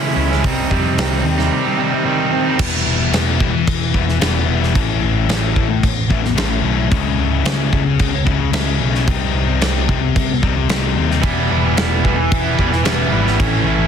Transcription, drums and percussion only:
0.32 snare
0.44 kick, open hi-hat
0.71 kick
0.98 snare, open hi-hat
1.39 snare
2.59 kick, crash
3.13 snare, crash
3.40 kick
3.68 kick, crash
3.94 kick
4.09 snare
4.21 snare, crash
4.63 snare
4.75 kick, crash
5.29 snare, crash
5.56 kick
5.83 kick, crash
6.10 kick
6.25 snare
6.38 snare, crash
6.91 kick, crash
7.45 snare, crash
7.73 kick
7.99 kick, crash
8.27 kick
8.53 snare, crash
8.95 snare
9.08 kick, crash
9.61 snare, crash
9.89 kick
10.16 kick, crash
10.43 kick
10.69 snare, crash
11.11 snare
11.23 kick, crash
11.77 snare, crash
12.05 kick
12.32 kick, crash
12.59 kick
12.73 snare
12.85 snare, crash
13.27 snare
13.40 kick, crash

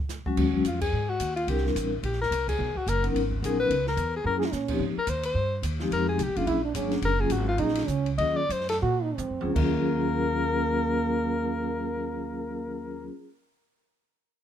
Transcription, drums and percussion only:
0.09 snare, hi-hat pedal
0.26 kick
0.37 kick, crash
0.54 kick
0.65 hi-hat pedal, ride
0.81 kick, crash
1.20 kick, hi-hat pedal, ride
1.37 ride
1.48 kick, ride
1.58 snare
1.66 snare
1.76 kick, hi-hat pedal, ride
2.03 kick, ride
2.13 snare
2.23 snare
2.31 kick, hi-hat pedal, ride
2.48 kick, crash
2.76 kick
2.87 kick, hi-hat pedal, ride
3.04 ride
3.15 kick, ride
3.31 kick
3.43 kick, hi-hat pedal, ride
3.70 kick, ride
3.87 snare
3.97 kick, hi-hat pedal, ride
4.42 snare
4.52 snare, hi-hat pedal
4.68 kick, crash
5.07 kick, hi-hat pedal, ride
5.23 ride
5.35 kick
5.63 kick, hi-hat pedal, ride
5.80 snare
5.91 kick, ride
6.19 kick, hi-hat pedal, ride
6.36 ride
6.47 kick, ride
6.75 kick, hi-hat pedal, ride
6.91 snare, ride
7.02 kick, ride
7.30 kick, hi-hat pedal, ride
7.58 kick, ride
7.68 snare
7.75 snare, ride
7.88 kick, hi-hat pedal
8.06 ride
8.18 kick, ride
8.50 kick, hi-hat pedal, ride
8.61 snare
8.69 snare, ride
8.82 kick
9.18 hi-hat pedal, high tom
9.41 high tom
9.56 kick, crash

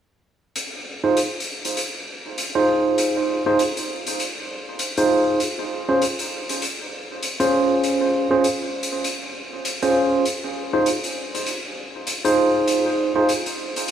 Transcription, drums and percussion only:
0.56 closed hi-hat
1.17 closed hi-hat
1.40 closed hi-hat
1.65 closed hi-hat
1.77 closed hi-hat
2.38 closed hi-hat
2.98 closed hi-hat
3.59 closed hi-hat
3.77 closed hi-hat
4.07 closed hi-hat
4.20 closed hi-hat
4.79 closed hi-hat
4.97 closed hi-hat
5.40 closed hi-hat
6.02 closed hi-hat
6.19 closed hi-hat
6.49 closed hi-hat
6.62 closed hi-hat
7.23 closed hi-hat
7.40 closed hi-hat
7.84 closed hi-hat
8.44 closed hi-hat
8.83 closed hi-hat
9.04 closed hi-hat
9.65 closed hi-hat
9.82 closed hi-hat
10.25 closed hi-hat
10.86 closed hi-hat
11.04 closed hi-hat
11.35 closed hi-hat
11.46 closed hi-hat
12.07 closed hi-hat
12.25 closed hi-hat
12.68 closed hi-hat
13.29 closed hi-hat
13.46 closed hi-hat
13.76 closed hi-hat

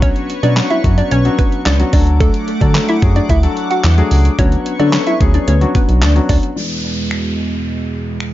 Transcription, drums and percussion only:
0.02 kick, closed hi-hat
0.16 closed hi-hat
0.30 closed hi-hat
0.43 closed hi-hat
0.57 snare, clap, closed hi-hat
0.70 closed hi-hat
0.84 kick, closed hi-hat
0.98 closed hi-hat
1.11 closed hi-hat
1.25 closed hi-hat
1.39 kick, closed hi-hat
1.52 closed hi-hat
1.66 snare, clap, closed hi-hat
1.80 closed hi-hat
1.93 kick, open hi-hat
2.07 closed hi-hat
2.21 kick, closed hi-hat
2.34 closed hi-hat
2.48 closed hi-hat
2.61 kick, closed hi-hat
2.75 snare, clap, closed hi-hat
2.88 closed hi-hat
3.02 kick, closed hi-hat
3.16 closed hi-hat
3.29 kick, closed hi-hat
3.43 closed hi-hat
3.57 closed hi-hat
3.71 closed hi-hat
3.84 snare, clap, closed hi-hat
3.98 closed hi-hat
4.11 open hi-hat
4.25 closed hi-hat
4.39 kick, closed hi-hat
4.52 closed hi-hat
4.66 closed hi-hat
4.80 closed hi-hat
4.93 snare, clap, closed hi-hat
5.07 closed hi-hat
5.21 kick, closed hi-hat
5.34 closed hi-hat
5.48 closed hi-hat
5.61 closed hi-hat
5.75 kick, closed hi-hat
5.89 closed hi-hat
6.02 snare, clap, closed hi-hat
6.16 closed hi-hat
6.29 kick, open hi-hat
6.43 closed hi-hat
7.11 finger snap
8.20 finger snap

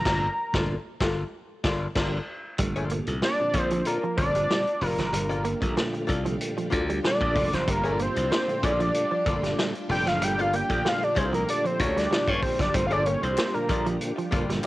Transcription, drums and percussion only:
0.05 kick, snare, crash
0.54 kick, snare
1.00 kick, snare
1.64 kick, snare
1.95 kick, snare, crash
2.58 kick, closed hi-hat
2.76 closed hi-hat
2.90 closed hi-hat
3.07 closed hi-hat
3.22 snare
3.53 kick, closed hi-hat
3.71 closed hi-hat
3.85 closed hi-hat
4.18 kick, closed hi-hat
4.35 closed hi-hat
4.50 snare
4.67 closed hi-hat
4.82 open hi-hat
4.99 snare, closed hi-hat
5.14 closed hi-hat
5.31 closed hi-hat
5.45 closed hi-hat
5.62 kick, closed hi-hat
5.77 snare
5.94 closed hi-hat
6.09 kick, closed hi-hat
6.26 closed hi-hat
6.41 closed hi-hat
6.58 closed hi-hat
6.72 kick, closed hi-hat
6.90 closed hi-hat
7.04 snare
7.21 kick
7.36 kick, open hi-hat
7.53 snare, closed hi-hat
7.68 kick, closed hi-hat
7.85 closed hi-hat
7.99 closed hi-hat
8.16 closed hi-hat
8.32 snare
8.49 closed hi-hat
8.63 kick, closed hi-hat
8.80 closed hi-hat
8.94 closed hi-hat
9.26 kick, closed hi-hat
9.44 snare, closed hi-hat
9.59 snare
9.75 closed hi-hat
9.90 open hi-hat
10.07 snare, closed hi-hat
10.22 closed hi-hat
10.39 closed hi-hat
10.53 closed hi-hat
10.70 kick, closed hi-hat
10.86 snare
11.03 closed hi-hat
11.16 kick, closed hi-hat
11.34 closed hi-hat
11.48 closed hi-hat
11.65 closed hi-hat
11.80 kick, closed hi-hat
11.97 snare, closed hi-hat
12.12 snare
12.28 kick, closed hi-hat
12.43 kick, open hi-hat
12.59 kick, snare, closed hi-hat
12.74 kick, closed hi-hat
12.91 closed hi-hat
13.06 closed hi-hat
13.23 closed hi-hat
13.38 snare, clap
13.55 closed hi-hat
13.69 kick, closed hi-hat
13.86 closed hi-hat
14.01 closed hi-hat
14.18 closed hi-hat
14.32 kick, closed hi-hat
14.50 snare, closed hi-hat

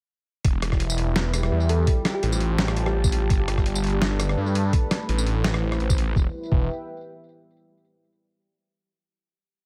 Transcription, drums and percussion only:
0.45 kick, closed hi-hat
0.62 cross-stick, closed hi-hat
0.72 kick, cross-stick
0.80 closed hi-hat
0.90 tambourine
0.98 closed hi-hat
1.16 snare, closed hi-hat
1.34 cross-stick, closed hi-hat, tambourine
1.43 cross-stick
1.69 closed hi-hat
1.87 kick, closed hi-hat
2.05 cross-stick, snare, closed hi-hat
2.23 closed hi-hat
2.32 tambourine
2.40 closed hi-hat
2.58 snare, closed hi-hat
2.68 cross-stick
2.77 closed hi-hat
2.86 cross-stick
3.04 kick, tambourine
3.12 closed hi-hat
3.30 kick, closed hi-hat
3.48 cross-stick, closed hi-hat
3.58 kick, cross-stick
3.66 closed hi-hat
3.75 tambourine
3.84 closed hi-hat
3.87 closed hi-hat
3.90 closed hi-hat
4.02 snare, closed hi-hat
4.20 cross-stick, closed hi-hat, tambourine
4.29 cross-stick
4.55 closed hi-hat
4.73 kick, closed hi-hat
4.91 cross-stick, snare, closed hi-hat
5.09 closed hi-hat
5.18 tambourine
5.27 closed hi-hat
5.44 snare, closed hi-hat
5.54 cross-stick
5.72 cross-stick
5.80 closed hi-hat
5.90 kick, tambourine
5.98 closed hi-hat
6.16 kick
6.52 kick

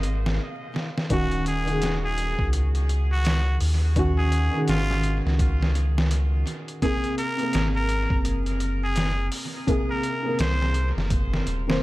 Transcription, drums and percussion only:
0.03 closed hi-hat
0.26 snare
0.76 snare
0.98 snare
1.10 kick, closed hi-hat
1.31 closed hi-hat
1.46 closed hi-hat
1.68 closed hi-hat
1.82 snare, closed hi-hat
2.18 closed hi-hat
2.39 kick
2.53 closed hi-hat
2.75 closed hi-hat
2.89 closed hi-hat
3.25 snare, closed hi-hat
3.61 open hi-hat
3.96 kick, closed hi-hat
4.32 closed hi-hat
4.68 snare, closed hi-hat
4.91 snare
5.03 closed hi-hat
5.27 snare
5.39 kick, closed hi-hat
5.63 snare
5.75 closed hi-hat
5.98 snare
6.11 closed hi-hat
6.47 closed hi-hat
6.68 closed hi-hat
6.82 kick, closed hi-hat
7.04 closed hi-hat
7.18 closed hi-hat
7.39 closed hi-hat
7.53 snare, closed hi-hat
7.89 closed hi-hat
8.10 kick
8.25 closed hi-hat
8.46 closed hi-hat
8.60 closed hi-hat
8.96 snare, closed hi-hat
9.32 open hi-hat
9.68 kick, closed hi-hat
10.03 closed hi-hat
10.39 snare, closed hi-hat
10.62 snare
10.74 closed hi-hat
10.98 snare
11.10 kick, closed hi-hat
11.34 snare
11.47 closed hi-hat
11.70 snare

